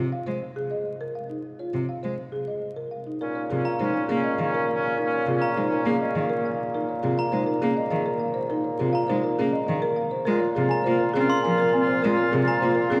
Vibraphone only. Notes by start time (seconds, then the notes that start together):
0.71 G#4
1.30 D#4
1.59 F4
2.48 G#4
3.07 D#4
3.21 D#4
3.50 F4
3.79 D#4
4.09 C#4
4.39 G#4
4.98 D#4
5.27 F4
5.57 D#4
5.86 C#4
6.16 G#4
6.74 D#4
7.03 F4
7.33 D#4
7.62 C#4
7.92 G#4
8.51 D#4
8.80 F4
9.10 D#4
9.39 C#4
9.68 G#4
10.27 F4
10.56 G#4
10.86 F4
11.16 C#4
11.45 A#4
11.74 C4
12.03 F4
12.33 G#4
12.62 F4
12.91 C#4